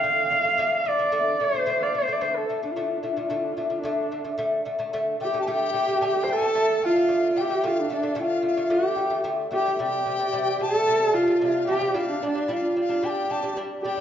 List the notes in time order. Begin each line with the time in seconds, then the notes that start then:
Already playing: F5
0.04 D3 A3
0.31 D3 A3
0.44 D3 A3
0.58 D3 A3
0.85 D3 A3 D5
0.99 D3 A3
1.12 D3 A3
1.40 D3 A3 C5
1.53 D3 A3
1.66 D3 A3
1.81 D5 F5
1.94 D3 A3
1.99 C5
2.08 D3 A3
2.12 D5
2.21 D3 A3 C5
2.37 A4
2.49 D3 A3
2.63 D3 A3 D4
2.72 F4
2.76 D3 A3
2.81 D4
2.89 F4
2.96 D4
3.03 D3 A3 F4
3.13 D3 D4
3.17 A3 F4
3.28 D3 A3 D4
3.36 F4
3.44 D4
3.53 F4
3.57 D3 A3 D4
3.69 D3 A3 F4
3.78 D4
3.83 D3 A3
4.11 D3 A3
4.24 D3 A3
4.38 D3 A3
4.65 D3 A3
4.79 D3 A3
4.93 D3 A3
5.20 D3 A3 G4 G5
5.33 D3 A3
5.41 A5
5.47 D3 A3 G4 G5
5.73 D3 A3
5.87 D3 A3
6.01 D3 A3 G5 A5
6.24 C5
6.28 D3 A3 A5
6.33 A4
6.41 D3 A3
6.55 D3 A3
6.82 D3 A3 F4 F5
6.96 D3 A3
7.08 D3 A3
7.36 D3 A3 G5
7.40 G4
7.50 D3 A3
7.63 D3 A3 F4 F5
7.81 D4
7.90 D3 A3 D5
7.94 D4
8.02 D3 A3
8.15 D3 A3
8.20 F4 G5
8.25 F5
8.42 D3 A3
8.47 F5
8.57 D3 A3
8.70 D3 A3 G4
8.75 G5
8.96 D3 A3
9.10 D3 A3
9.24 D3 A3
9.51 D3 A3 G4
9.55 G5
9.65 D3 A3
9.79 C3 G3 G4 G5
10.06 C3 G3
10.19 C3 G3
10.33 C3 G3
10.60 C3 G3 A4 A5
10.73 C3 G3
10.87 C3 G3
11.13 C3 G3 F4 F5
11.27 C3 G3
11.41 C3 G3 F5
11.67 C3 G3 G4 A5
11.75 G5
11.80 C3 G3
11.94 G3 D4 F4 F5
12.08 D4
12.22 G3 D4
12.27 D5
12.35 G3 D4
12.48 G3 D4 F4
12.53 F5
12.76 G3 D4 F5
12.89 G3 D4
13.02 G3 D4 G4 A5
13.09 G5
13.30 G3 D4 A5
13.43 G3 D4
13.57 G3 D4
13.82 G3 D4 G4
13.86 G5
13.97 G3 D4